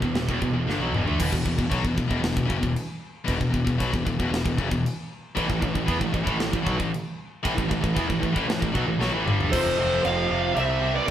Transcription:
0.02 picked electric bass E1, distorted electric guitar E2 B2, kick
0.14 picked electric bass E1, distorted electric guitar E2 B2, snare, china
0.29 picked electric bass E1, distorted electric guitar E2 B2, kick
0.42 picked electric bass E1, distorted electric guitar E2 B2, kick
0.52 picked electric bass E1, distorted electric guitar E2 B2
0.67 picked electric bass G1, distorted electric guitar G2 D3, snare
0.78 picked electric bass B1, distorted electric guitar B2 F#3, high tom
0.92 picked electric bass E1, distorted electric guitar E2 B2, mid tom
1.05 picked electric bass D2, distorted electric guitar D3 A3, floor tom
1.20 picked electric bass E1, distorted electric guitar E2 B2, kick, crash
1.33 picked electric bass E1, distorted electric guitar E2 B2, kick
1.45 picked electric bass E1, distorted electric guitar E2 B2, kick
1.58 picked electric bass E1, distorted electric guitar E2 B2, kick
1.69 picked electric bass B1, distorted electric guitar B2 F#3, kick, crash
1.83 picked electric bass E1, distorted electric guitar E2 B2, kick
1.95 picked electric bass E1, distorted electric guitar E2 B2, kick
2.08 picked electric bass E1, distorted electric guitar E2 B2, kick
2.22 picked electric bass E1, distorted electric guitar E2 B2, snare, crash
2.33 distorted electric guitar E2 B2
2.37 picked electric bass E1, kick
2.45 distorted electric guitar F#2 C#3
2.50 picked electric bass F#1, kick
2.58 distorted electric guitar E2 B2
2.63 picked electric bass E1, kick
2.76 crash
3.24 distorted electric guitar E2 B2, kick
3.28 picked electric bass E1, crash
3.38 picked electric bass E1, distorted electric guitar E2 B2, kick
3.50 picked electric bass E1, distorted electric guitar E2 B2, kick
3.64 picked electric bass E1, distorted electric guitar E2 B2, kick
3.79 picked electric bass B1, distorted electric guitar B2 F#3, kick, crash
3.92 picked electric bass E1, distorted electric guitar E2 B2, kick
4.05 picked electric bass E1, distorted electric guitar E2 B2, kick
4.19 picked electric bass E1, distorted electric guitar E2 B2, kick
4.29 picked electric bass E1, distorted electric guitar E2 B2
4.34 snare, crash
4.44 picked electric bass E1, distorted electric guitar E2 B2, kick
4.57 picked electric bass F#1, distorted electric guitar F#2 C#3, kick
4.70 picked electric bass E1, distorted electric guitar E2 B2, kick
4.86 crash
5.35 picked electric bass A1, distorted electric guitar A2 E3, kick, crash
5.47 picked electric bass A1, distorted electric guitar A2 E3, kick
5.60 picked electric bass A1, distorted electric guitar A2 E3, kick
5.74 picked electric bass A1, distorted electric guitar A2 E3, kick
5.86 picked electric bass E2, distorted electric guitar E3 B3, kick, crash
5.99 picked electric bass A1, distorted electric guitar A2 E3, kick
6.12 picked electric bass A1, distorted electric guitar A2 E3, kick
6.24 picked electric bass A1, distorted electric guitar A2 E3, kick
6.38 picked electric bass A1, distorted electric guitar A2 E3, snare, crash
6.51 picked electric bass A1, distorted electric guitar A2 E3, kick
6.62 distorted electric guitar B2 F#3
6.67 picked electric bass B1, kick
6.78 picked electric bass A1, distorted electric guitar A2 E3, kick
6.94 crash
7.43 picked electric bass A1, distorted electric guitar A2 E3, kick, crash
7.54 picked electric bass A1, distorted electric guitar A2 E3, kick
7.69 picked electric bass A1, distorted electric guitar A2 E3, kick
7.81 picked electric bass A1, distorted electric guitar A2 E3, kick
7.94 picked electric bass E2, distorted electric guitar E3 B3, kick, crash
8.08 picked electric bass A1, distorted electric guitar A2 E3, kick
8.20 picked electric bass A1, distorted electric guitar A2 E3, kick
8.32 picked electric bass A1, distorted electric guitar A2 E3, kick
8.47 picked electric bass A1, distorted electric guitar A2 E3, snare, crash
8.60 picked electric bass A1, distorted electric guitar A2 E3, kick
8.72 picked electric bass B1, distorted electric guitar B2 F#3, kick
8.86 picked electric bass A1, distorted electric guitar A2 E3
8.98 picked electric bass B1, distorted electric guitar B2 F#3, snare
9.12 picked electric bass A1, distorted electric guitar A2 E3
9.24 picked electric bass G1, distorted electric guitar G2 D3 G3, mid tom
9.41 floor tom
9.51 picked electric bass F1, distorted electric guitar F2 C3 F3, lead electric guitar A4 C5, kick, crash
9.78 picked electric bass F1, distorted electric guitar F2 C3 F3
10.03 picked electric bass F1, distorted electric guitar F2 C3 F3, lead electric guitar C5 F5, crash
10.29 picked electric bass F1, distorted electric guitar F2 C3 F3
10.54 picked electric bass C2, distorted electric guitar C3 G3 C4, lead electric guitar C5 E5, crash
10.81 distorted electric guitar C3 G3 C4
10.94 lead electric guitar B4 D5
11.06 distorted electric guitar C3 G3 C4, lead electric guitar A4

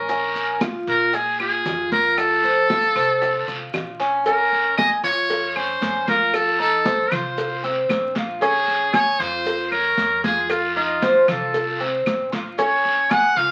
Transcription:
Already playing: upright bass A#1, muted trumpet A#4
0.09 cuban tres C#4, high bongo, high conga, long guiro, maracas
0.35 high conga, maracas
0.61 cuban tres F4, high bongo, high conga, short guiro, claves, maracas
0.87 upright bass A#2, muted trumpet A#4, high bongo, high conga, short guiro, maracas
1.13 cuban tres G#4, muted trumpet G#4, high bongo, high conga, long guiro, maracas
1.40 cuban tres F4, muted trumpet G#4, high bongo, high conga, claves
1.65 upright bass F2, high bongo, low bongo, high conga, short guiro, maracas
1.92 cuban tres F4, muted trumpet A#4, high bongo, high conga, short guiro, maracas
2.18 muted trumpet A4, high bongo, high conga, long guiro, claves, maracas
2.43 cuban tres C5, high conga, maracas
2.70 cuban tres F4, high bongo, high conga, short guiro, maracas
2.95 upright bass C2, cuban tres C5, high bongo, high conga, short guiro, claves, maracas
3.22 high bongo, high conga, long guiro, maracas
3.47 upright bass C2, cuban tres F4, high bongo, high conga, maracas
3.74 upright bass A#1, high bongo, low bongo, high conga, short guiro, claves, maracas
4.00 cuban tres C#4, high bongo, short guiro, maracas
4.26 cuban tres C#4, muted trumpet A#4, cowbell, high conga, long guiro, maracas
4.52 high conga, maracas
4.77 cuban tres G#4, muted trumpet D#5, cowbell, high conga, short guiro, claves, maracas
5.03 upright bass F2, cuban tres F4, muted trumpet C#5, cowbell, high conga, short guiro, maracas
5.30 cowbell, high conga, long guiro, maracas
5.56 cuban tres C#4, muted trumpet C5, high conga, claves, maracas
5.81 upright bass F2, cowbell, high conga, short guiro, maracas
6.08 cuban tres F4, muted trumpet A#4, cowbell, high conga, short guiro, maracas
6.34 muted trumpet A4, cowbell, high conga, long guiro, claves, maracas
6.59 cuban tres D#4, muted trumpet A4, high conga, maracas
6.85 cuban tres C5, cowbell, high conga, short guiro, maracas
7.11 upright bass C2, cuban tres F4, muted trumpet C5, cowbell, high conga, low conga, short guiro, claves, maracas
7.37 cowbell, high conga, long guiro, maracas
7.64 cuban tres C4, cowbell, high conga, maracas
7.89 upright bass A#1, cowbell, high conga, short guiro, claves, maracas
8.15 cuban tres F4, cowbell, high conga, short guiro, maracas
8.41 cuban tres C#4, muted trumpet G#4, cowbell, high conga, long guiro, maracas
8.68 high conga, maracas
8.93 cuban tres G#4, muted trumpet C#5, cowbell, high conga, short guiro, claves, maracas
9.19 upright bass F2, cuban tres F4, muted trumpet C5, cowbell, high conga, short guiro, maracas
9.46 cowbell, high conga, long guiro, maracas
9.72 muted trumpet A#4, cuban tres C#5, high conga, claves, maracas
9.97 upright bass F2, cowbell, high conga, short guiro, maracas
10.24 cuban tres F4, muted trumpet G#4, cowbell, high conga, short guiro, maracas
10.50 muted trumpet F4, cowbell, high conga, long guiro, claves, maracas
10.76 cuban tres D#4, muted trumpet F4, high conga, maracas
11.02 cuban tres C5, cowbell, high conga, short guiro, maracas
11.28 upright bass C2, cuban tres F4, muted trumpet A4, cowbell, high conga, low conga, short guiro, claves, maracas
11.54 cowbell, high conga, long guiro, maracas
11.80 cuban tres C4, cowbell, high conga, maracas
12.06 upright bass A#1, cowbell, high conga, short guiro, claves, maracas
12.32 cuban tres F4, cowbell, high conga, short guiro, maracas
12.58 cuban tres C#4, muted trumpet C#5, cowbell, high conga, long guiro, maracas
12.85 high conga, maracas
13.10 cuban tres G#4, muted trumpet F#5, cowbell, high conga, short guiro, claves, maracas
13.36 upright bass C#2, cuban tres F4, muted trumpet F5, cowbell, high conga, short guiro, maracas

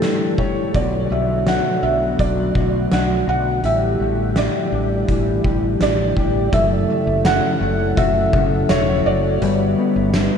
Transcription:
Already playing: clean electric guitar A2 E3 A3 G4, tonewheel organ D3 G3 A3 E4 G4, felt piano A4
0.02 clean electric guitar D4, snare, closed hi-hat
0.38 clean electric guitar G4, felt piano C#5, kick
0.74 fretless electric bass B1, clean electric guitar B2 F#4, tonewheel organ F#3 B3 F#4, felt piano D5, kick, closed hi-hat
1.11 fretless electric bass B1, clean electric guitar A3, felt piano E5
1.47 clean electric guitar F#4, felt piano F#5, snare, closed hi-hat
1.83 fretless electric bass B1, clean electric guitar D4, felt piano E5
2.19 fretless electric bass B1, clean electric guitar F#3, felt piano D5, kick, closed hi-hat
2.55 fretless electric bass B1, clean electric guitar F#4, kick
2.91 fretless electric bass B1, clean electric guitar D4, felt piano F#5, snare, closed hi-hat
3.27 fretless electric bass B1, clean electric guitar F#4, felt piano F#5
3.63 fretless electric bass A1, clean electric guitar A2 G4, tonewheel organ G3 A3 E4 G4, felt piano E5, closed hi-hat
4.00 fretless electric bass A1, clean electric guitar A3
4.36 clean electric guitar G4, felt piano D5, snare, closed hi-hat
4.72 fretless electric bass A1, clean electric guitar D4
5.08 fretless electric bass A1, clean electric guitar E3, kick, closed hi-hat
5.44 fretless electric bass A1, clean electric guitar G4, kick
5.80 fretless electric bass A1, clean electric guitar D4, felt piano D5, snare, closed hi-hat
6.16 fretless electric bass A1, clean electric guitar G4, kick
6.52 fretless electric bass F#1, clean electric guitar F#2, tonewheel organ C#3 F#3 A3 E4 A4, felt piano E5, kick, closed hi-hat
6.89 clean electric guitar A3
7.07 fretless electric bass F#1
7.25 clean electric guitar C#4, felt piano F#5, snare, closed hi-hat, tambourine
7.61 fretless electric bass F#1, clean electric guitar A3
7.97 fretless electric bass F#1, clean electric guitar F#4, felt piano E5, kick, closed hi-hat
8.33 fretless electric bass F#1, clean electric guitar C#4, kick
8.69 fretless electric bass E1, clean electric guitar F#4, felt piano C#5, snare, closed hi-hat, tambourine
9.06 fretless electric bass F#1, felt piano D5
9.42 fretless electric bass G1, tonewheel organ D3 G3 B3 B4, clean electric guitar G3, closed hi-hat
9.78 clean electric guitar B3
9.96 fretless electric bass G1
10.14 clean electric guitar D4, snare, closed hi-hat, tambourine

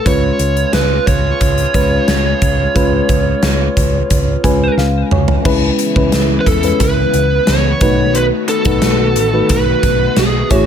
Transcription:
0.05 picked electric bass C#2, horn section C#3 B3 F4, fm electric piano G#3 C#4 F4 B4, lead electric guitar C#5, kick, closed hi-hat
0.39 picked electric bass C#2, closed hi-hat
0.57 closed hi-hat
0.73 picked electric bass C#2, lead electric guitar B4, snare, closed hi-hat
1.07 picked electric bass C#2, lead electric guitar C#5, kick, closed hi-hat
1.41 picked electric bass C#2, kick, closed hi-hat
1.58 closed hi-hat
1.74 picked electric bass C#2, fm electric piano G#3 C#4 F4 B4, kick, closed hi-hat
2.08 picked electric bass C#2, snare, closed hi-hat
2.42 picked electric bass C#2, kick, closed hi-hat
2.75 picked electric bass C#2, fm electric piano G#3 C#4 F4 B4, kick, closed hi-hat
3.09 picked electric bass C#2, kick, closed hi-hat
3.43 picked electric bass C#2, snare, closed hi-hat
3.77 picked electric bass C#2, kick, closed hi-hat
4.10 picked electric bass C#2, kick, closed hi-hat
4.43 picked electric bass C#2, fm electric piano G#3 C#4 F4 B4 G#5, kick, closed hi-hat
4.77 picked electric bass C#2, fm electric piano F5, snare
5.11 picked electric bass C#2, fm electric piano C#5, mid tom
5.28 floor tom
5.44 picked electric bass C#2, string machine C#3 E3 B3 E4, fm electric piano G#3 C#4 E4 B4, kick, crash
5.79 closed hi-hat
5.96 picked electric bass C#2, fm electric piano G#3 C#4 E4 B4, kick
6.12 picked electric bass C#2, snare, closed hi-hat
6.41 lead electric guitar B4
6.46 picked electric bass E2, lead electric guitar A4, kick, closed hi-hat
6.63 fm electric piano G#3 C#4 E4 B4, closed hi-hat
6.80 picked electric bass C#2, lead electric guitar B4, kick, closed hi-hat
7.14 picked electric bass C#2, closed hi-hat
7.47 picked electric bass C#2, lead electric guitar C#5, snare, closed hi-hat
7.80 picked electric bass B1, string machine D#3 A3 F#4, fm electric piano A3 D#4 F#4 B4, kick, closed hi-hat
8.15 lead electric guitar B4, closed hi-hat
8.48 lead electric guitar A4, closed hi-hat
8.65 picked electric bass B1, fm electric piano A3 D#4 F#4 B4, kick, closed hi-hat
8.82 picked electric bass B1, snare, closed hi-hat
9.16 picked electric bass A1, closed hi-hat
9.33 fm electric piano A3 D#4 F#4 B4
9.49 picked electric bass B1, lead electric guitar B4, kick, closed hi-hat
9.83 picked electric bass B1, kick, closed hi-hat
10.16 picked electric bass B1, lead electric guitar G#4, snare, closed hi-hat
10.50 picked electric bass A1, string machine C#3 E3 E4, fm electric piano A3 E4 G#4 C#5, kick, closed hi-hat

